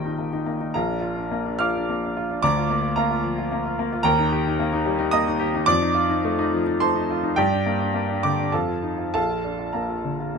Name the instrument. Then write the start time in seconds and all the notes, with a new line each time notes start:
grand piano
Already playing: A#1 D#3 A#3 D#4 G4 A#4 D#5 G5 A#5
0.06 D#4
0.18 A#3
0.33 D#4
0.46 A#3
0.61 D#4
0.74 A#1 A#4 F5 A#5
0.88 D4
1.01 F4
1.16 D4
1.31 A#3
1.46 D4
1.59 F3 F5 D6 F6
1.75 D4
1.90 A#3
2.05 D4
2.17 F4
2.30 D4
2.43 D2 D5 A#5 D6
2.57 F4
2.70 A#3
2.82 F4
2.96 A#3 A#4 F5 A#5
3.11 F4
3.23 F3
3.38 F4
3.52 A#3
3.65 F4
3.79 A#3
3.92 F4
4.03 D#2 A#4 G5 A#5
4.19 D#4
4.32 G4
4.47 D#4
4.59 A#3
4.73 D#4
4.86 G3
4.99 D#4
5.11 A#3 D#5 A#5 D#6
5.27 D#4
5.39 G4
5.55 D#4
5.66 F2 D5 D6
5.82 D#4
5.94 F4
6.10 D#4
6.25 A3
6.39 D#4
6.53 F3
6.67 D#4
6.80 A3 C5 A5 C6
6.96 D#4
7.11 F4
7.24 D#4
7.36 G2 G4 D5 G5
7.52 D4
7.66 A#3
7.80 D4
7.94 A#3
8.09 D4
8.23 D3 D5 D6
8.40 D4
8.52 F2 A4 F5 A5
8.68 F4
8.83 D#4
8.98 F4
9.14 A#1 A4 F5 A5
9.30 F4
9.44 D4
9.59 F4
9.73 A#3 A#4 F5 A#5
9.90 F4
10.05 D3
10.20 F4
10.35 A#3